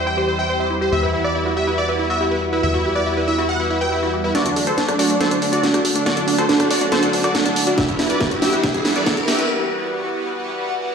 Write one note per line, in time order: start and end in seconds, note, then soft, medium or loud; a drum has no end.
0.00 0.90 E2 medium
0.06 0.21 E3 medium
0.06 0.21 G3 medium
0.06 0.21 C4 medium
0.06 0.17 E4 loud
0.06 0.21 G4 medium
0.06 0.15 G5 medium
0.17 0.27 G4 medium
0.17 0.26 C5 medium
0.28 0.43 E3 medium
0.28 0.43 G3 medium
0.28 0.43 C4 medium
0.28 0.43 G4 medium
0.28 0.32 C5 medium
0.28 0.37 C5 medium
0.38 0.46 E5 medium
0.38 0.47 G5 medium
0.49 0.64 E3 medium
0.49 0.64 G3 medium
0.49 0.64 C4 medium
0.49 0.64 G4 medium
0.49 0.58 C5 medium
0.49 0.57 G5 medium
0.60 0.69 C5 medium
0.60 0.64 E5 medium
0.70 0.86 E3 medium
0.70 0.86 G3 medium
0.70 0.86 C4 medium
0.70 0.81 E4 medium
0.70 0.85 G4 medium
0.81 0.91 G4 loud
0.81 0.90 C5 medium
0.92 2.61 E2 medium
0.92 1.07 E3 medium
0.92 1.07 G3 medium
0.92 1.07 B3 medium
0.92 1.07 F#4 medium
0.92 0.96 G4 medium
0.92 1.01 E5 medium
1.03 1.12 E4 medium
1.03 1.10 B4 medium
1.13 1.28 E3 medium
1.13 1.28 G3 medium
1.13 1.28 B3 medium
1.13 1.22 E4 medium
1.13 1.28 F#4 medium
1.13 1.21 E5 medium
1.24 1.29 B4 medium
1.24 1.33 D5 medium
1.35 1.50 E3 medium
1.35 1.50 G3 medium
1.35 1.50 B3 medium
1.35 1.45 E4 medium
1.35 1.44 E4 medium
1.35 1.50 F#4 medium
1.46 1.54 E4 medium
1.46 1.56 F#4 loud
1.56 1.71 E3 medium
1.56 1.71 G3 medium
1.56 1.71 B3 medium
1.56 1.71 F#4 medium
1.56 1.61 G4 medium
1.56 1.65 E5 medium
1.67 1.76 E4 medium
1.67 1.75 B4 medium
1.78 1.93 E3 medium
1.78 1.93 G3 medium
1.78 1.93 B3 medium
1.78 1.93 F#4 medium
1.78 1.86 D5 medium
1.78 1.85 E5 medium
1.89 1.97 E4 medium
1.89 1.93 B4 loud
1.99 2.14 E3 medium
1.99 2.14 G3 medium
1.99 2.14 B3 medium
1.99 2.09 E4 loud
1.99 2.08 E4 medium
1.99 2.14 F#4 medium
2.10 2.20 F#4 loud
2.10 2.18 E5 medium
2.21 2.36 E3 medium
2.21 2.36 G3 medium
2.21 2.36 B3 medium
2.21 2.29 E4 medium
2.21 2.36 F#4 medium
2.21 2.25 G4 medium
2.31 2.40 E4 medium
2.31 2.39 B4 medium
2.42 2.57 E3 medium
2.42 2.57 G3 medium
2.42 2.57 B3 medium
2.42 2.57 F#4 medium
2.42 2.49 E5 medium
2.53 2.61 E4 medium
2.53 2.57 B4 loud
2.63 4.33 E2 medium
2.63 2.79 E3 medium
2.63 2.79 G3 medium
2.63 2.79 B3 medium
2.63 2.74 E4 loud
2.63 2.79 F#4 medium
2.63 2.72 E5 medium
2.74 2.83 E4 medium
2.74 2.84 F#4 loud
2.85 3.00 E3 medium
2.85 3.00 G3 medium
2.85 3.00 B3 medium
2.85 2.93 E4 medium
2.85 3.00 F#4 medium
2.85 2.89 G4 medium
2.95 3.03 B4 medium
2.95 3.04 D5 medium
3.06 3.21 E3 medium
3.06 3.21 G3 medium
3.06 3.21 B3 medium
3.06 3.15 E4 medium
3.06 3.21 F#4 medium
3.06 3.14 E5 medium
3.17 3.26 E4 medium
3.17 3.22 B4 loud
3.28 3.43 E3 medium
3.28 3.43 G3 medium
3.28 3.43 B3 medium
3.28 3.38 E4 loud
3.28 3.43 F#4 medium
3.28 3.36 E5 medium
3.38 3.47 E4 medium
3.38 3.49 F#4 loud
3.49 3.64 E3 medium
3.49 3.64 G3 medium
3.49 3.64 B3 medium
3.49 3.64 F#4 medium
3.49 3.54 G4 medium
3.49 3.58 F#5 medium
3.60 3.68 E4 medium
3.60 3.67 B4 medium
3.70 3.86 E3 medium
3.70 3.86 G3 medium
3.70 3.86 B3 medium
3.70 3.79 E4 medium
3.70 3.86 F#4 medium
3.70 3.78 E5 medium
3.81 3.86 B4 loud
3.81 3.90 G5 medium
3.92 4.07 E3 medium
3.92 4.07 G3 medium
3.92 4.07 B3 medium
3.92 4.01 E4 medium
3.92 4.02 E4 loud
3.92 4.07 F#4 medium
4.02 4.11 E4 medium
4.02 4.13 F#4 medium
4.13 4.28 E3 medium
4.13 4.28 G3 medium
4.13 4.28 B3 medium
4.13 4.28 F#4 medium
4.13 4.18 G4 medium
4.24 4.33 E4 medium
4.24 4.32 B4 medium
4.35 4.50 D3 medium
4.35 4.50 F#3 medium
4.35 4.50 A3 medium
4.35 4.45 D4 loud
4.35 4.43 F#4 medium
4.35 4.50 F#4 medium
4.35 4.43 D5 loud
4.35 snare soft
4.35 closed hi-hat medium
4.35 riser medium
4.46 4.54 D4 medium
4.46 4.56 F#4 loud
4.46 closed hi-hat medium
4.56 4.65 D2 medium
4.56 4.71 D3 medium
4.56 4.71 F#3 medium
4.56 4.71 A3 medium
4.56 4.65 D4 medium
4.56 4.71 F#4 medium
4.56 4.61 A4 medium
4.56 open hi-hat loud
4.67 4.76 D2 medium
4.67 4.76 A4 medium
4.67 4.76 C5 medium
4.67 4.74 D5 medium
4.67 cross-stick medium
4.67 closed hi-hat medium
4.78 4.93 D3 medium
4.78 4.93 F#3 medium
4.78 4.93 A3 medium
4.78 4.86 D4 medium
4.78 4.93 F#4 medium
4.78 4.85 F#5 medium
4.78 snare soft
4.78 closed hi-hat medium
4.88 4.97 D2 medium
4.88 4.97 D4 medium
4.88 4.93 D5 loud
4.88 cross-stick medium
4.88 closed hi-hat medium
4.99 5.14 D3 medium
4.99 5.14 F#3 medium
4.99 5.14 A3 medium
4.99 5.09 D4 loud
4.99 5.08 F#4 medium
4.99 5.14 F#4 medium
4.99 5.08 D5 medium
4.99 open hi-hat medium
5.10 5.19 D2 medium
5.10 5.18 D4 medium
5.10 5.20 F#4 medium
5.10 closed hi-hat medium
5.20 5.36 D3 medium
5.20 5.36 F#3 medium
5.20 5.36 A3 medium
5.20 5.36 F#4 medium
5.20 5.29 A4 medium
5.20 5.25 A4 medium
5.20 5.29 C5 medium
5.20 snare medium
5.20 closed hi-hat medium
5.31 5.40 D4 medium
5.31 5.39 D5 medium
5.31 closed hi-hat medium
5.42 5.51 D2 medium
5.42 5.57 D3 medium
5.42 5.57 F#3 medium
5.42 5.57 A3 medium
5.42 5.50 D4 medium
5.42 5.57 F#4 medium
5.42 5.49 F#5 medium
5.42 open hi-hat loud
5.52 5.62 D2 medium
5.52 5.61 F#4 medium
5.52 5.57 D5 loud
5.52 5.61 D5 medium
5.52 closed hi-hat medium
5.63 5.78 D3 medium
5.63 5.78 F#3 medium
5.63 5.78 A3 medium
5.63 5.74 D4 loud
5.63 5.72 D4 medium
5.63 5.78 F#4 medium
5.63 snare medium
5.63 closed hi-hat medium
5.74 5.83 D2 medium
5.74 5.83 D4 medium
5.74 5.84 F#4 loud
5.74 cross-stick medium
5.74 closed hi-hat medium
5.84 6.00 D3 medium
5.84 6.00 F#3 medium
5.84 6.00 A3 medium
5.84 6.00 F#4 medium
5.84 5.89 A4 medium
5.84 open hi-hat loud
5.95 6.05 D2 medium
5.95 6.04 D4 medium
5.95 6.03 D5 medium
5.95 closed hi-hat medium
6.06 6.21 D3 medium
6.06 6.21 F#3 medium
6.06 6.21 A3 medium
6.06 6.21 F#4 medium
6.06 6.15 F#4 medium
6.06 6.15 D5 loud
6.06 6.14 F#5 medium
6.06 snare medium
6.06 closed hi-hat medium
6.17 6.25 D4 medium
6.17 6.21 D5 loud
6.17 closed hi-hat medium
6.28 6.37 D2 medium
6.28 6.43 D3 medium
6.28 6.43 F#3 medium
6.28 6.43 A3 medium
6.28 6.38 D4 loud
6.28 6.36 D4 medium
6.28 6.43 F#4 medium
6.28 open hi-hat loud
6.38 6.47 D2 medium
6.38 6.49 F#4 loud
6.38 6.47 A4 medium
6.38 6.47 C5 medium
6.38 cross-stick medium
6.38 closed hi-hat medium
6.49 6.64 D3 medium
6.49 6.64 F#3 medium
6.49 6.64 A3 medium
6.49 6.58 D4 medium
6.49 6.64 F#4 medium
6.49 6.54 A4 medium
6.49 snare medium
6.49 closed hi-hat medium
6.60 6.69 D2 medium
6.60 6.69 D4 medium
6.60 6.67 D5 medium
6.60 cross-stick medium
6.60 closed hi-hat medium
6.70 6.86 D3 medium
6.70 6.86 F#3 medium
6.70 6.86 A3 medium
6.70 6.86 F#4 medium
6.70 6.79 F#4 medium
6.70 6.79 D5 medium
6.70 6.78 F#5 medium
6.70 open hi-hat loud
6.81 6.90 D2 medium
6.81 6.90 D4 medium
6.81 6.86 D5 loud
6.81 closed hi-hat medium
6.92 7.07 D3 medium
6.92 7.07 F#3 medium
6.92 7.07 A3 medium
6.92 7.02 D4 loud
6.92 7.07 F#4 medium
6.92 7.01 A4 medium
6.92 7.01 C5 medium
6.92 snare medium
6.92 closed hi-hat medium
7.03 7.11 D4 medium
7.03 7.13 F#4 loud
7.03 closed hi-hat medium
7.13 7.22 D2 medium
7.13 7.28 D3 medium
7.13 7.28 F#3 medium
7.13 7.28 A3 medium
7.13 7.22 D4 medium
7.13 7.28 F#4 medium
7.13 7.18 A4 medium
7.13 open hi-hat loud
7.24 7.33 D2 medium
7.24 7.33 F#4 medium
7.24 7.33 D5 medium
7.24 7.32 D5 medium
7.24 cross-stick medium
7.24 closed hi-hat medium
7.35 7.50 D3 medium
7.35 7.50 F#3 medium
7.35 7.50 A3 medium
7.35 7.43 D4 medium
7.35 7.50 F#4 medium
7.35 7.42 F#5 medium
7.35 snare medium
7.35 closed hi-hat medium
7.46 7.55 D2 medium
7.46 7.54 D4 medium
7.46 7.50 D5 loud
7.46 closed hi-hat medium
7.56 7.71 D3 medium
7.56 7.71 F#3 medium
7.56 7.71 A3 medium
7.56 7.67 D4 loud
7.56 7.71 F#4 medium
7.56 open hi-hat loud
7.67 7.76 D2 medium
7.67 7.76 D4 medium
7.67 7.77 F#4 loud
7.67 closed hi-hat medium
7.78 7.93 E3 medium
7.78 7.93 G3 medium
7.78 7.93 B3 medium
7.78 7.93 F#4 medium
7.78 7.82 G4 medium
7.78 7.86 G4 medium
7.78 7.86 E5 medium
7.78 kick loud
7.78 snare medium
7.78 closed hi-hat medium
7.88 7.97 E4 medium
7.88 7.96 B4 medium
7.88 closed hi-hat medium
7.99 8.08 E2 medium
7.99 8.14 E3 medium
7.99 8.14 G3 medium
7.99 8.14 B3 medium
7.99 8.08 E4 medium
7.99 8.14 F#4 medium
7.99 8.07 E5 medium
7.99 snare medium
7.99 open hi-hat loud
8.10 8.19 E2 medium
8.10 8.14 B4 medium
8.10 8.18 B4 medium
8.10 8.18 D5 medium
8.10 closed hi-hat medium
8.20 8.36 E3 medium
8.20 8.36 G3 medium
8.20 8.36 B3 medium
8.20 8.31 E4 medium
8.20 8.29 E4 medium
8.20 8.36 F#4 medium
8.20 kick loud
8.20 snare medium
8.20 closed hi-hat medium
8.31 8.40 E2 medium
8.31 8.40 E4 medium
8.31 8.42 F#4 medium
8.31 closed hi-hat medium
8.42 8.57 E3 medium
8.42 8.57 G3 medium
8.42 8.57 B3 medium
8.42 8.57 F#4 medium
8.42 8.51 G4 medium
8.42 8.47 G4 medium
8.42 8.51 E5 medium
8.42 snare medium
8.42 open hi-hat loud
8.53 8.62 E2 medium
8.53 8.61 E4 medium
8.53 8.60 B4 medium
8.53 closed hi-hat medium
8.63 8.79 E3 medium
8.63 8.79 G3 medium
8.63 8.79 B3 medium
8.63 8.79 F#4 medium
8.63 8.68 G4 medium
8.63 8.72 G4 medium
8.63 8.72 E5 medium
8.63 kick loud
8.63 snare medium
8.63 closed hi-hat medium
8.74 8.83 E4 medium
8.74 8.82 B4 medium
8.74 closed hi-hat medium
8.85 8.94 E2 medium
8.85 9.00 E3 medium
8.85 9.00 G3 medium
8.85 9.00 B3 medium
8.85 8.94 E4 medium
8.85 9.00 F#4 medium
8.85 8.92 E5 medium
8.85 snare medium
8.85 open hi-hat loud
8.96 9.05 E2 medium
8.96 9.00 B4 loud
8.96 9.04 B4 medium
8.96 9.04 D5 medium
8.96 closed hi-hat medium
9.06 9.21 E3 medium
9.06 9.21 G3 medium
9.06 9.21 B3 medium
9.06 9.17 E4 loud
9.06 9.15 E4 medium
9.06 9.21 F#4 medium
9.06 kick loud
9.06 snare medium
9.06 closed hi-hat medium
9.17 9.26 E2 medium
9.17 9.26 E4 medium
9.17 9.27 F#4 loud
9.17 closed hi-hat medium
9.28 9.43 E3 medium
9.28 9.43 G3 medium
9.28 9.43 B3 medium
9.28 9.43 F#4 medium
9.28 9.36 G4 medium
9.28 9.32 G4 medium
9.28 9.36 E5 medium
9.28 snare medium
9.28 open hi-hat loud
9.38 9.48 E2 medium
9.38 9.47 E4 medium
9.38 9.46 B4 medium
9.38 closed hi-hat medium
9.49 9.64 E3 medium
9.49 9.64 G3 medium
9.49 9.64 B3 medium
9.49 9.64 F#4 medium
9.71 9.86 E3 medium
9.71 9.86 G3 medium
9.71 9.86 B3 medium
9.71 9.86 F#4 medium
9.92 10.07 E3 medium
9.92 10.07 G3 medium
9.92 10.07 B3 medium
9.92 10.07 F#4 medium
10.13 10.28 E3 medium
10.13 10.28 G3 medium
10.13 10.28 B3 medium
10.13 10.28 F#4 medium
10.35 10.50 E3 medium
10.35 10.50 G3 medium
10.35 10.50 B3 medium
10.35 10.50 F#4 loud
10.56 10.71 E3 medium
10.56 10.71 G3 medium
10.56 10.71 B3 medium
10.56 10.71 F#4 medium
10.78 10.93 E3 medium
10.78 10.93 G3 medium
10.78 10.93 B3 medium
10.78 10.93 F#4 medium